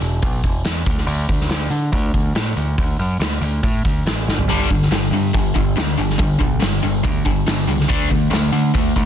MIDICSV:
0, 0, Header, 1, 4, 480
1, 0, Start_track
1, 0, Tempo, 425834
1, 1215, Time_signature, 4, 2, 24, 8
1, 10205, End_track
2, 0, Start_track
2, 0, Title_t, "Distorted electric guitar"
2, 0, Program_c, 0, 30
2, 5060, Note_on_c, 0, 43, 81
2, 5066, Note_on_c, 0, 50, 92
2, 5068, Note_on_c, 0, 55, 91
2, 5282, Note_off_c, 0, 43, 0
2, 5287, Note_off_c, 0, 50, 0
2, 5288, Note_off_c, 0, 55, 0
2, 5295, Note_on_c, 0, 43, 67
2, 5303, Note_on_c, 0, 50, 76
2, 5512, Note_off_c, 0, 43, 0
2, 5516, Note_off_c, 0, 50, 0
2, 5534, Note_on_c, 0, 43, 70
2, 5542, Note_on_c, 0, 50, 76
2, 5752, Note_off_c, 0, 43, 0
2, 5756, Note_off_c, 0, 50, 0
2, 5783, Note_on_c, 0, 43, 69
2, 5789, Note_on_c, 0, 50, 74
2, 5996, Note_off_c, 0, 43, 0
2, 5999, Note_off_c, 0, 50, 0
2, 6012, Note_on_c, 0, 43, 63
2, 6017, Note_on_c, 0, 50, 72
2, 6230, Note_off_c, 0, 43, 0
2, 6233, Note_off_c, 0, 50, 0
2, 6247, Note_on_c, 0, 43, 74
2, 6252, Note_on_c, 0, 50, 84
2, 6468, Note_off_c, 0, 43, 0
2, 6470, Note_off_c, 0, 50, 0
2, 6491, Note_on_c, 0, 43, 62
2, 6499, Note_on_c, 0, 50, 82
2, 6710, Note_off_c, 0, 43, 0
2, 6714, Note_off_c, 0, 50, 0
2, 6736, Note_on_c, 0, 43, 72
2, 6739, Note_on_c, 0, 50, 72
2, 6952, Note_off_c, 0, 43, 0
2, 6954, Note_off_c, 0, 50, 0
2, 6967, Note_on_c, 0, 43, 64
2, 6977, Note_on_c, 0, 50, 71
2, 7188, Note_off_c, 0, 43, 0
2, 7193, Note_off_c, 0, 50, 0
2, 7201, Note_on_c, 0, 43, 69
2, 7205, Note_on_c, 0, 50, 78
2, 7424, Note_off_c, 0, 43, 0
2, 7426, Note_off_c, 0, 50, 0
2, 7440, Note_on_c, 0, 43, 65
2, 7445, Note_on_c, 0, 50, 83
2, 7664, Note_off_c, 0, 43, 0
2, 7666, Note_off_c, 0, 50, 0
2, 7697, Note_on_c, 0, 43, 73
2, 7698, Note_on_c, 0, 50, 78
2, 7912, Note_off_c, 0, 43, 0
2, 7913, Note_off_c, 0, 50, 0
2, 7931, Note_on_c, 0, 43, 70
2, 7934, Note_on_c, 0, 50, 76
2, 8149, Note_off_c, 0, 43, 0
2, 8150, Note_off_c, 0, 50, 0
2, 8173, Note_on_c, 0, 43, 73
2, 8178, Note_on_c, 0, 50, 80
2, 8390, Note_off_c, 0, 43, 0
2, 8392, Note_off_c, 0, 50, 0
2, 8416, Note_on_c, 0, 43, 64
2, 8417, Note_on_c, 0, 50, 68
2, 8631, Note_off_c, 0, 43, 0
2, 8632, Note_off_c, 0, 50, 0
2, 8657, Note_on_c, 0, 43, 82
2, 8657, Note_on_c, 0, 50, 80
2, 8871, Note_off_c, 0, 50, 0
2, 8872, Note_off_c, 0, 43, 0
2, 8891, Note_on_c, 0, 50, 86
2, 8893, Note_on_c, 0, 57, 99
2, 8898, Note_on_c, 0, 62, 87
2, 9111, Note_off_c, 0, 50, 0
2, 9116, Note_off_c, 0, 57, 0
2, 9121, Note_off_c, 0, 62, 0
2, 9125, Note_on_c, 0, 50, 72
2, 9129, Note_on_c, 0, 57, 76
2, 9345, Note_off_c, 0, 50, 0
2, 9347, Note_off_c, 0, 57, 0
2, 9361, Note_on_c, 0, 50, 81
2, 9368, Note_on_c, 0, 57, 75
2, 9583, Note_off_c, 0, 50, 0
2, 9586, Note_off_c, 0, 57, 0
2, 9611, Note_on_c, 0, 50, 70
2, 9613, Note_on_c, 0, 57, 85
2, 9827, Note_off_c, 0, 50, 0
2, 9828, Note_off_c, 0, 57, 0
2, 9850, Note_on_c, 0, 50, 66
2, 9858, Note_on_c, 0, 57, 81
2, 10067, Note_off_c, 0, 50, 0
2, 10071, Note_off_c, 0, 57, 0
2, 10103, Note_on_c, 0, 50, 67
2, 10103, Note_on_c, 0, 57, 77
2, 10205, Note_off_c, 0, 50, 0
2, 10205, Note_off_c, 0, 57, 0
2, 10205, End_track
3, 0, Start_track
3, 0, Title_t, "Picked electric bass"
3, 0, Program_c, 1, 34
3, 7, Note_on_c, 1, 28, 94
3, 219, Note_off_c, 1, 28, 0
3, 254, Note_on_c, 1, 35, 99
3, 463, Note_off_c, 1, 35, 0
3, 490, Note_on_c, 1, 28, 83
3, 701, Note_off_c, 1, 28, 0
3, 729, Note_on_c, 1, 40, 86
3, 940, Note_off_c, 1, 40, 0
3, 974, Note_on_c, 1, 38, 81
3, 1183, Note_off_c, 1, 38, 0
3, 1201, Note_on_c, 1, 38, 88
3, 1416, Note_off_c, 1, 38, 0
3, 1449, Note_on_c, 1, 38, 84
3, 1661, Note_off_c, 1, 38, 0
3, 1679, Note_on_c, 1, 38, 84
3, 1895, Note_off_c, 1, 38, 0
3, 1920, Note_on_c, 1, 50, 89
3, 2136, Note_off_c, 1, 50, 0
3, 2165, Note_on_c, 1, 38, 105
3, 2379, Note_off_c, 1, 38, 0
3, 2411, Note_on_c, 1, 38, 88
3, 2622, Note_off_c, 1, 38, 0
3, 2650, Note_on_c, 1, 45, 91
3, 2862, Note_off_c, 1, 45, 0
3, 2888, Note_on_c, 1, 38, 85
3, 3101, Note_off_c, 1, 38, 0
3, 3133, Note_on_c, 1, 38, 85
3, 3344, Note_off_c, 1, 38, 0
3, 3373, Note_on_c, 1, 42, 80
3, 3584, Note_off_c, 1, 42, 0
3, 3602, Note_on_c, 1, 38, 88
3, 3817, Note_off_c, 1, 38, 0
3, 3842, Note_on_c, 1, 38, 81
3, 4057, Note_off_c, 1, 38, 0
3, 4092, Note_on_c, 1, 45, 99
3, 4303, Note_off_c, 1, 45, 0
3, 4336, Note_on_c, 1, 38, 87
3, 4545, Note_off_c, 1, 38, 0
3, 4569, Note_on_c, 1, 33, 85
3, 4808, Note_on_c, 1, 31, 82
3, 4825, Note_off_c, 1, 33, 0
3, 5021, Note_off_c, 1, 31, 0
3, 5040, Note_on_c, 1, 31, 92
3, 5256, Note_off_c, 1, 31, 0
3, 5300, Note_on_c, 1, 31, 82
3, 5507, Note_off_c, 1, 31, 0
3, 5520, Note_on_c, 1, 31, 82
3, 5737, Note_off_c, 1, 31, 0
3, 5762, Note_on_c, 1, 43, 85
3, 5977, Note_off_c, 1, 43, 0
3, 6020, Note_on_c, 1, 31, 95
3, 6228, Note_off_c, 1, 31, 0
3, 6257, Note_on_c, 1, 31, 84
3, 6466, Note_off_c, 1, 31, 0
3, 6501, Note_on_c, 1, 38, 90
3, 6708, Note_off_c, 1, 38, 0
3, 6744, Note_on_c, 1, 31, 90
3, 6950, Note_off_c, 1, 31, 0
3, 6973, Note_on_c, 1, 31, 82
3, 7184, Note_off_c, 1, 31, 0
3, 7219, Note_on_c, 1, 35, 82
3, 7427, Note_off_c, 1, 35, 0
3, 7461, Note_on_c, 1, 31, 83
3, 7667, Note_off_c, 1, 31, 0
3, 7701, Note_on_c, 1, 31, 90
3, 7907, Note_off_c, 1, 31, 0
3, 7941, Note_on_c, 1, 38, 93
3, 8147, Note_off_c, 1, 38, 0
3, 8179, Note_on_c, 1, 31, 91
3, 8386, Note_off_c, 1, 31, 0
3, 8418, Note_on_c, 1, 31, 83
3, 8625, Note_off_c, 1, 31, 0
3, 8650, Note_on_c, 1, 37, 79
3, 8860, Note_off_c, 1, 37, 0
3, 8904, Note_on_c, 1, 38, 88
3, 9108, Note_off_c, 1, 38, 0
3, 9141, Note_on_c, 1, 38, 87
3, 9346, Note_off_c, 1, 38, 0
3, 9363, Note_on_c, 1, 38, 94
3, 9576, Note_off_c, 1, 38, 0
3, 9605, Note_on_c, 1, 50, 88
3, 9817, Note_off_c, 1, 50, 0
3, 9857, Note_on_c, 1, 38, 99
3, 10063, Note_off_c, 1, 38, 0
3, 10099, Note_on_c, 1, 38, 80
3, 10205, Note_off_c, 1, 38, 0
3, 10205, End_track
4, 0, Start_track
4, 0, Title_t, "Drums"
4, 16, Note_on_c, 9, 46, 55
4, 128, Note_off_c, 9, 46, 0
4, 251, Note_on_c, 9, 46, 68
4, 255, Note_on_c, 9, 36, 105
4, 364, Note_off_c, 9, 46, 0
4, 368, Note_off_c, 9, 36, 0
4, 490, Note_on_c, 9, 46, 57
4, 493, Note_on_c, 9, 36, 72
4, 603, Note_off_c, 9, 46, 0
4, 606, Note_off_c, 9, 36, 0
4, 729, Note_on_c, 9, 46, 83
4, 738, Note_on_c, 9, 38, 106
4, 842, Note_off_c, 9, 46, 0
4, 851, Note_off_c, 9, 38, 0
4, 974, Note_on_c, 9, 36, 99
4, 974, Note_on_c, 9, 46, 64
4, 1087, Note_off_c, 9, 36, 0
4, 1087, Note_off_c, 9, 46, 0
4, 1104, Note_on_c, 9, 38, 31
4, 1216, Note_on_c, 9, 46, 85
4, 1217, Note_off_c, 9, 38, 0
4, 1328, Note_off_c, 9, 46, 0
4, 1454, Note_on_c, 9, 46, 53
4, 1455, Note_on_c, 9, 36, 75
4, 1567, Note_off_c, 9, 36, 0
4, 1567, Note_off_c, 9, 46, 0
4, 1586, Note_on_c, 9, 38, 31
4, 1691, Note_on_c, 9, 46, 73
4, 1698, Note_off_c, 9, 38, 0
4, 1700, Note_on_c, 9, 38, 110
4, 1803, Note_off_c, 9, 46, 0
4, 1812, Note_off_c, 9, 38, 0
4, 1929, Note_on_c, 9, 46, 52
4, 2041, Note_off_c, 9, 46, 0
4, 2173, Note_on_c, 9, 36, 102
4, 2173, Note_on_c, 9, 46, 75
4, 2285, Note_off_c, 9, 36, 0
4, 2286, Note_off_c, 9, 46, 0
4, 2410, Note_on_c, 9, 46, 52
4, 2412, Note_on_c, 9, 36, 78
4, 2523, Note_off_c, 9, 46, 0
4, 2525, Note_off_c, 9, 36, 0
4, 2651, Note_on_c, 9, 46, 70
4, 2660, Note_on_c, 9, 38, 112
4, 2764, Note_off_c, 9, 46, 0
4, 2773, Note_off_c, 9, 38, 0
4, 2894, Note_on_c, 9, 46, 55
4, 3007, Note_off_c, 9, 46, 0
4, 3134, Note_on_c, 9, 46, 73
4, 3135, Note_on_c, 9, 36, 105
4, 3247, Note_off_c, 9, 46, 0
4, 3248, Note_off_c, 9, 36, 0
4, 3374, Note_on_c, 9, 46, 53
4, 3486, Note_off_c, 9, 46, 0
4, 3617, Note_on_c, 9, 46, 67
4, 3626, Note_on_c, 9, 38, 105
4, 3730, Note_off_c, 9, 46, 0
4, 3739, Note_off_c, 9, 38, 0
4, 3854, Note_on_c, 9, 46, 56
4, 3967, Note_off_c, 9, 46, 0
4, 4092, Note_on_c, 9, 46, 75
4, 4097, Note_on_c, 9, 36, 110
4, 4205, Note_off_c, 9, 46, 0
4, 4210, Note_off_c, 9, 36, 0
4, 4340, Note_on_c, 9, 36, 81
4, 4340, Note_on_c, 9, 46, 56
4, 4452, Note_off_c, 9, 36, 0
4, 4452, Note_off_c, 9, 46, 0
4, 4582, Note_on_c, 9, 46, 77
4, 4591, Note_on_c, 9, 38, 112
4, 4695, Note_off_c, 9, 46, 0
4, 4704, Note_off_c, 9, 38, 0
4, 4829, Note_on_c, 9, 38, 62
4, 4941, Note_off_c, 9, 38, 0
4, 4943, Note_on_c, 9, 43, 80
4, 5056, Note_off_c, 9, 43, 0
4, 5061, Note_on_c, 9, 46, 88
4, 5173, Note_off_c, 9, 46, 0
4, 5304, Note_on_c, 9, 36, 73
4, 5304, Note_on_c, 9, 46, 56
4, 5416, Note_off_c, 9, 36, 0
4, 5417, Note_off_c, 9, 46, 0
4, 5437, Note_on_c, 9, 38, 35
4, 5539, Note_on_c, 9, 46, 72
4, 5548, Note_off_c, 9, 38, 0
4, 5548, Note_on_c, 9, 38, 100
4, 5652, Note_off_c, 9, 46, 0
4, 5661, Note_off_c, 9, 38, 0
4, 5786, Note_on_c, 9, 46, 56
4, 5899, Note_off_c, 9, 46, 0
4, 6022, Note_on_c, 9, 46, 71
4, 6024, Note_on_c, 9, 36, 101
4, 6135, Note_off_c, 9, 46, 0
4, 6137, Note_off_c, 9, 36, 0
4, 6265, Note_on_c, 9, 36, 72
4, 6265, Note_on_c, 9, 46, 47
4, 6378, Note_off_c, 9, 36, 0
4, 6378, Note_off_c, 9, 46, 0
4, 6507, Note_on_c, 9, 46, 77
4, 6516, Note_on_c, 9, 38, 117
4, 6619, Note_off_c, 9, 46, 0
4, 6628, Note_off_c, 9, 38, 0
4, 6748, Note_on_c, 9, 46, 51
4, 6861, Note_off_c, 9, 46, 0
4, 6876, Note_on_c, 9, 38, 31
4, 6975, Note_on_c, 9, 46, 79
4, 6981, Note_on_c, 9, 36, 119
4, 6989, Note_off_c, 9, 38, 0
4, 7088, Note_off_c, 9, 46, 0
4, 7094, Note_off_c, 9, 36, 0
4, 7217, Note_on_c, 9, 46, 50
4, 7222, Note_on_c, 9, 36, 80
4, 7329, Note_off_c, 9, 46, 0
4, 7335, Note_off_c, 9, 36, 0
4, 7457, Note_on_c, 9, 46, 73
4, 7466, Note_on_c, 9, 38, 106
4, 7569, Note_off_c, 9, 46, 0
4, 7578, Note_off_c, 9, 38, 0
4, 7700, Note_on_c, 9, 46, 55
4, 7813, Note_off_c, 9, 46, 0
4, 7942, Note_on_c, 9, 36, 109
4, 7942, Note_on_c, 9, 46, 74
4, 8055, Note_off_c, 9, 36, 0
4, 8055, Note_off_c, 9, 46, 0
4, 8182, Note_on_c, 9, 36, 78
4, 8183, Note_on_c, 9, 46, 52
4, 8294, Note_off_c, 9, 36, 0
4, 8296, Note_off_c, 9, 46, 0
4, 8420, Note_on_c, 9, 46, 82
4, 8429, Note_on_c, 9, 38, 108
4, 8533, Note_off_c, 9, 46, 0
4, 8542, Note_off_c, 9, 38, 0
4, 8668, Note_on_c, 9, 46, 58
4, 8781, Note_off_c, 9, 46, 0
4, 8795, Note_on_c, 9, 38, 32
4, 8903, Note_on_c, 9, 36, 117
4, 8907, Note_off_c, 9, 38, 0
4, 8908, Note_on_c, 9, 46, 81
4, 9015, Note_off_c, 9, 36, 0
4, 9021, Note_off_c, 9, 46, 0
4, 9142, Note_on_c, 9, 36, 77
4, 9147, Note_on_c, 9, 46, 56
4, 9255, Note_off_c, 9, 36, 0
4, 9260, Note_off_c, 9, 46, 0
4, 9385, Note_on_c, 9, 46, 74
4, 9394, Note_on_c, 9, 38, 96
4, 9497, Note_off_c, 9, 46, 0
4, 9506, Note_off_c, 9, 38, 0
4, 9625, Note_on_c, 9, 46, 63
4, 9738, Note_off_c, 9, 46, 0
4, 9860, Note_on_c, 9, 36, 102
4, 9864, Note_on_c, 9, 46, 81
4, 9973, Note_off_c, 9, 36, 0
4, 9977, Note_off_c, 9, 46, 0
4, 10099, Note_on_c, 9, 36, 82
4, 10101, Note_on_c, 9, 46, 51
4, 10205, Note_off_c, 9, 36, 0
4, 10205, Note_off_c, 9, 46, 0
4, 10205, End_track
0, 0, End_of_file